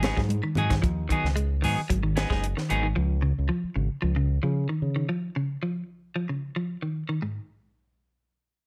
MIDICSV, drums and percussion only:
0, 0, Header, 1, 2, 480
1, 0, Start_track
1, 0, Tempo, 532860
1, 749, Time_signature, 4, 2, 24, 8
1, 7801, End_track
2, 0, Start_track
2, 0, Title_t, "Drums"
2, 25, Note_on_c, 9, 63, 90
2, 25, Note_on_c, 9, 64, 68
2, 26, Note_on_c, 9, 75, 64
2, 31, Note_on_c, 9, 42, 50
2, 38, Note_on_c, 9, 38, 80
2, 115, Note_off_c, 9, 63, 0
2, 115, Note_off_c, 9, 64, 0
2, 116, Note_off_c, 9, 75, 0
2, 121, Note_off_c, 9, 42, 0
2, 128, Note_off_c, 9, 38, 0
2, 156, Note_on_c, 9, 36, 70
2, 162, Note_on_c, 9, 38, 25
2, 246, Note_off_c, 9, 36, 0
2, 252, Note_off_c, 9, 38, 0
2, 260, Note_on_c, 9, 63, 67
2, 272, Note_on_c, 9, 42, 68
2, 350, Note_off_c, 9, 63, 0
2, 362, Note_off_c, 9, 42, 0
2, 385, Note_on_c, 9, 75, 61
2, 475, Note_off_c, 9, 75, 0
2, 499, Note_on_c, 9, 64, 80
2, 515, Note_on_c, 9, 42, 52
2, 589, Note_off_c, 9, 64, 0
2, 605, Note_off_c, 9, 42, 0
2, 635, Note_on_c, 9, 42, 48
2, 636, Note_on_c, 9, 36, 62
2, 642, Note_on_c, 9, 38, 30
2, 725, Note_off_c, 9, 42, 0
2, 726, Note_off_c, 9, 36, 0
2, 732, Note_off_c, 9, 38, 0
2, 753, Note_on_c, 9, 36, 101
2, 754, Note_on_c, 9, 42, 66
2, 843, Note_off_c, 9, 36, 0
2, 844, Note_off_c, 9, 42, 0
2, 993, Note_on_c, 9, 36, 65
2, 996, Note_on_c, 9, 42, 55
2, 1083, Note_off_c, 9, 36, 0
2, 1086, Note_off_c, 9, 42, 0
2, 1129, Note_on_c, 9, 38, 24
2, 1219, Note_off_c, 9, 38, 0
2, 1231, Note_on_c, 9, 42, 67
2, 1321, Note_off_c, 9, 42, 0
2, 1475, Note_on_c, 9, 46, 68
2, 1565, Note_off_c, 9, 46, 0
2, 1713, Note_on_c, 9, 36, 67
2, 1714, Note_on_c, 9, 42, 73
2, 1803, Note_off_c, 9, 36, 0
2, 1804, Note_off_c, 9, 42, 0
2, 1952, Note_on_c, 9, 42, 55
2, 1960, Note_on_c, 9, 38, 68
2, 2042, Note_off_c, 9, 42, 0
2, 2050, Note_off_c, 9, 38, 0
2, 2076, Note_on_c, 9, 36, 71
2, 2086, Note_on_c, 9, 38, 25
2, 2166, Note_off_c, 9, 36, 0
2, 2176, Note_off_c, 9, 38, 0
2, 2194, Note_on_c, 9, 42, 77
2, 2285, Note_off_c, 9, 42, 0
2, 2324, Note_on_c, 9, 38, 25
2, 2414, Note_off_c, 9, 38, 0
2, 2433, Note_on_c, 9, 42, 56
2, 2523, Note_off_c, 9, 42, 0
2, 7801, End_track
0, 0, End_of_file